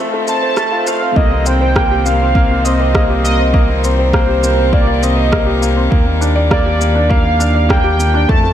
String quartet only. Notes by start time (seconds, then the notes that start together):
Already playing: D#3 F3 C4 A4
1.16 G3
1.65 A#4
8.29 F3
8.48 C4